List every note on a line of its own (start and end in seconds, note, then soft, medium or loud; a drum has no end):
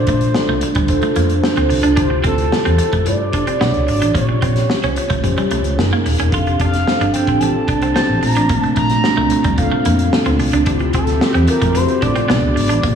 0.00 0.27 D4 medium
0.00 0.28 F4 medium
0.00 0.28 A4 medium
0.00 0.28 C5 medium
0.00 0.91 C5 medium
0.07 0.30 A#1 medium
0.07 0.16 A3 medium
0.07 kick medium
0.07 closed hi-hat medium
0.21 closed hi-hat soft
0.34 0.84 D4 medium
0.34 0.84 F4 medium
0.34 0.84 A4 medium
0.34 0.85 D5 medium
0.34 snare loud
0.48 0.60 C2 medium
0.48 0.57 A3 medium
0.61 muted clean electric guitar stroke soft
0.61 closed hi-hat medium
0.75 0.98 D2 medium
0.75 0.84 G3 medium
0.75 kick medium
0.75 closed hi-hat soft
0.88 1.38 D4 medium
0.88 1.38 F4 medium
0.88 1.39 A4 medium
0.88 1.39 C5 loud
0.88 muted clean electric guitar stroke soft
0.88 kick medium
0.88 closed hi-hat medium
1.02 1.11 A3 medium
1.02 closed hi-hat soft
1.16 1.39 F2 medium
1.16 1.24 A#3 medium
1.16 closed hi-hat medium
1.30 closed hi-hat soft
1.43 1.93 D4 medium
1.43 1.93 F4 medium
1.43 1.93 A4 medium
1.43 1.93 C5 medium
1.43 snare loud
1.56 1.68 D2 medium
1.56 1.65 C4 medium
1.56 closed hi-hat soft
1.70 1.82 C2 medium
1.70 muted clean electric guitar stroke soft
1.70 open hi-hat medium
1.83 1.95 C#2 medium
1.83 1.91 D4 medium
1.83 closed hi-hat medium
1.96 2.20 D2 medium
1.96 2.05 D4 medium
1.96 2.47 E4 medium
1.96 2.47 F4 medium
1.96 2.47 G4 medium
1.96 2.47 C5 loud
1.96 kick loud
1.96 closed hi-hat medium
2.10 muted clean electric guitar stroke soft
2.24 2.48 D2 loud
2.24 2.32 C4 medium
2.24 3.08 A4 medium
2.24 kick medium
2.24 closed hi-hat medium
2.38 closed hi-hat soft
2.51 3.01 E4 medium
2.51 3.01 F4 medium
2.51 3.02 G4 medium
2.51 3.02 C5 medium
2.51 snare loud
2.65 2.77 E2 medium
2.65 2.73 C4 medium
2.65 closed hi-hat soft
2.78 muted clean electric guitar stroke soft
2.78 closed hi-hat medium
2.93 3.07 F2 medium
2.93 3.01 A3 medium
2.93 kick medium
2.93 closed hi-hat soft
3.06 3.30 G2 medium
3.06 3.56 E4 medium
3.06 3.56 F4 medium
3.06 3.56 G4 medium
3.06 3.88 D5 loud
3.06 3.56 D5 medium
3.06 muted clean electric guitar stroke soft
3.06 closed hi-hat medium
3.33 3.42 D4 medium
3.33 kick medium
3.33 closed hi-hat medium
3.47 3.55 C4 medium
3.47 closed hi-hat soft
3.60 3.72 B1 loud
3.60 3.69 B3 medium
3.60 4.10 D4 medium
3.60 4.10 F#4 medium
3.60 4.10 G#4 medium
3.60 4.11 C#5 medium
3.60 snare loud
3.74 3.86 C#2 medium
3.74 closed hi-hat soft
3.88 4.00 G#1 medium
3.88 4.14 D5 medium
3.88 muted clean electric guitar stroke soft
3.88 open hi-hat medium
4.02 4.13 A1 medium
4.02 4.09 D4 medium
4.02 closed hi-hat medium
4.14 4.38 A#1 loud
4.14 4.22 A#3 medium
4.14 4.21 C4 medium
4.14 4.65 F4 medium
4.14 4.65 G4 medium
4.14 4.65 C#5 medium
4.14 4.85 C#5 loud
4.14 kick loud
4.14 closed hi-hat medium
4.21 4.67 C#4 medium
4.29 muted clean electric guitar stroke soft
4.42 4.65 A#1 loud
4.42 4.50 C4 medium
4.42 kick medium
4.42 closed hi-hat medium
4.56 snare soft
4.56 closed hi-hat soft
4.69 5.19 C#4 medium
4.69 5.19 F4 medium
4.69 5.19 G4 medium
4.69 5.19 C#5 medium
4.69 snare medium
4.83 4.94 C2 medium
4.83 4.91 C#4 medium
4.83 5.20 C5 loud
4.83 closed hi-hat soft
4.96 muted clean electric guitar stroke soft
4.96 closed hi-hat medium
5.10 5.22 C#2 medium
5.10 5.18 A3 medium
5.10 kick medium
5.10 closed hi-hat soft
5.23 5.35 F2 medium
5.23 5.73 C#4 medium
5.23 5.73 F4 medium
5.23 5.73 G4 medium
5.23 5.73 C5 medium
5.23 muted clean electric guitar stroke soft
5.23 kick medium
5.23 closed hi-hat medium
5.37 5.45 G3 medium
5.37 closed hi-hat soft
5.51 5.63 C2 medium
5.51 5.59 A3 medium
5.51 closed hi-hat medium
5.64 5.76 C#2 medium
5.64 closed hi-hat soft
5.77 5.90 F#1 medium
5.77 6.27 C#4 medium
5.77 6.27 D#4 medium
5.77 6.27 G#4 medium
5.77 6.27 A#4 medium
5.77 snare loud
5.93 6.00 A#3 medium
6.06 6.17 D#1 medium
6.06 muted clean electric guitar stroke soft
6.06 open hi-hat medium
6.19 6.30 E1 medium
6.19 6.27 C#4 medium
6.19 closed hi-hat medium
6.32 6.55 F1 loud
6.32 8.21 F3 medium
6.32 6.81 C4 medium
6.32 6.82 D4 medium
6.32 10.64 D4 medium
6.32 6.41 F4 medium
6.32 6.82 G4 medium
6.32 6.82 A4 medium
6.32 8.21 A4 medium
6.32 6.57 F5 medium
6.32 kick loud
6.32 closed hi-hat medium
6.47 muted clean electric guitar stroke soft
6.47 closed hi-hat soft
6.60 6.82 F1 medium
6.60 6.68 D4 medium
6.60 7.10 F5 medium
6.60 kick medium
6.60 closed hi-hat medium
6.74 snare soft
6.74 closed hi-hat soft
6.87 7.36 C4 medium
6.87 7.36 D4 medium
6.87 7.37 G4 medium
6.87 7.37 C5 medium
6.87 snare medium
7.00 7.12 G1 medium
7.00 7.09 D4 medium
7.00 closed hi-hat soft
7.13 7.41 G5 medium
7.13 muted clean electric guitar stroke soft
7.13 closed hi-hat medium
7.27 7.50 A1 medium
7.27 7.36 C4 medium
7.27 kick medium
7.27 closed hi-hat soft
7.39 7.90 C4 medium
7.39 7.90 D4 medium
7.39 7.91 G4 medium
7.39 7.91 A4 medium
7.39 7.94 A5 loud
7.39 muted clean electric guitar stroke soft
7.39 closed hi-hat medium
7.68 7.91 C2 medium
7.68 7.76 D4 medium
7.68 kick medium
7.68 closed hi-hat medium
7.82 7.90 C4 medium
7.82 closed hi-hat soft
7.94 8.21 C4 medium
7.94 8.03 C4 medium
7.94 8.21 D4 medium
7.94 8.23 G4 medium
7.94 8.23 C5 medium
7.94 8.20 A5 loud
7.94 snare loud
8.09 8.20 A1 medium
8.21 8.35 A#1 medium
8.21 10.65 A#2 medium
8.21 8.97 A3 medium
8.21 10.65 A3 medium
8.21 8.97 C4 medium
8.21 8.97 D4 medium
8.21 8.97 F4 medium
8.21 8.58 A#5 loud
8.21 muted clean electric guitar stroke soft
8.21 open hi-hat medium
8.35 8.50 A1 medium
8.35 8.44 D4 medium
8.35 closed hi-hat medium
8.49 8.72 A#1 medium
8.49 8.58 A#3 medium
8.49 kick loud
8.49 closed hi-hat medium
8.58 8.72 A5 loud
8.63 muted clean electric guitar stroke soft
8.63 closed hi-hat soft
8.75 9.00 A#1 medium
8.75 8.85 A3 medium
8.75 9.53 A#5 loud
8.75 kick medium
8.75 closed hi-hat medium
8.90 snare soft
8.90 closed hi-hat medium
9.04 9.54 A3 medium
9.04 9.53 C4 medium
9.04 9.53 D4 medium
9.04 9.54 F4 medium
9.04 snare medium
9.17 9.29 C2 medium
9.17 9.25 A3 medium
9.30 muted clean electric guitar stroke soft
9.30 closed hi-hat medium
9.44 9.67 D2 medium
9.44 9.52 G3 medium
9.44 kick medium
9.44 closed hi-hat soft
9.58 10.07 C4 medium
9.58 10.08 D4 medium
9.58 10.08 F4 medium
9.58 10.08 A4 medium
9.58 10.36 F5 medium
9.58 muted clean electric guitar stroke soft
9.58 kick medium
9.58 closed hi-hat medium
9.72 9.79 A3 medium
9.85 10.08 F2 medium
9.85 9.93 A#3 medium
9.85 closed hi-hat medium
9.99 closed hi-hat soft
10.12 10.62 C4 medium
10.12 10.62 D4 medium
10.12 10.62 F4 medium
10.12 10.62 A4 medium
10.12 snare loud
10.25 10.37 D2 medium
10.25 10.34 C4 medium
10.25 closed hi-hat soft
10.39 10.51 C2 medium
10.39 muted clean electric guitar stroke soft
10.39 open hi-hat medium
10.53 10.64 C#2 medium
10.53 10.61 D4 medium
10.53 closed hi-hat medium
10.66 10.90 D2 medium
10.66 12.83 D3 medium
10.66 12.29 F3 medium
10.66 11.16 C4 medium
10.66 12.29 C4 medium
10.66 10.75 D4 medium
10.66 11.17 E4 medium
10.66 11.17 F4 medium
10.66 12.28 G4 medium
10.66 11.17 G4 medium
10.66 12.29 E5 medium
10.66 kick loud
10.66 closed hi-hat medium
10.79 muted clean electric guitar stroke soft
10.79 closed hi-hat soft
10.93 11.17 D2 medium
10.93 11.02 C4 medium
10.93 11.45 A4 medium
10.93 kick medium
10.93 closed hi-hat medium
11.07 snare soft
11.07 closed hi-hat soft
11.21 11.70 C4 medium
11.21 11.71 E4 medium
11.21 11.71 F4 medium
11.21 11.71 A4 medium
11.21 snare loud
11.34 11.46 E2 medium
11.34 11.42 C4 medium
11.34 closed hi-hat soft
11.48 11.77 A#4 medium
11.48 muted clean electric guitar stroke soft
11.48 closed hi-hat medium
11.62 11.85 F2 medium
11.62 11.69 A3 medium
11.62 kick medium
11.62 closed hi-hat soft
11.75 12.25 C4 medium
11.75 12.25 E4 medium
11.75 12.25 F4 medium
11.75 11.82 F#4 medium
11.75 12.02 C5 loud
11.75 muted clean electric guitar stroke soft
11.75 closed hi-hat medium
11.83 12.29 G4 medium
11.88 closed hi-hat soft
12.02 12.25 A2 medium
12.02 12.10 D4 medium
12.02 12.95 D5 loud
12.02 kick medium
12.02 closed hi-hat medium
12.16 12.23 C4 medium
12.16 closed hi-hat soft
12.28 12.41 B1 loud
12.28 12.84 G#3 medium
12.28 12.37 B3 medium
12.28 12.79 B3 medium
12.28 12.84 B3 medium
12.28 12.79 D4 medium
12.28 12.79 F#4 medium
12.28 12.79 G#4 medium
12.28 snare loud
12.43 12.54 C#2 medium
12.56 12.68 G#1 medium
12.56 muted clean electric guitar stroke soft
12.56 open hi-hat medium
12.69 12.82 A1 medium
12.69 12.77 D4 medium
12.69 closed hi-hat medium
12.83 12.95 A#1 medium
12.83 12.95 C#3 medium
12.83 12.95 G3 medium
12.83 12.91 A#3 medium
12.83 12.95 A#3 medium
12.83 12.95 C4 medium
12.83 12.95 F4 medium
12.83 12.95 G4 loud
12.83 kick loud
12.83 closed hi-hat medium